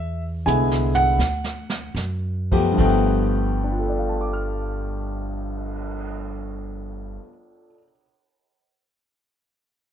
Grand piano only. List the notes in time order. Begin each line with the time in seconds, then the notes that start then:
Already playing: E5
0.46 D3 G#3 B3 E4 G#5
0.95 F#5
2.51 F3 A3 B3 G4
2.72 G2 F3
2.80 A3 B3 G5
3.64 D4
3.71 F4
3.79 A4
3.88 D5
3.98 F5
4.09 A5
4.21 D6
4.33 F6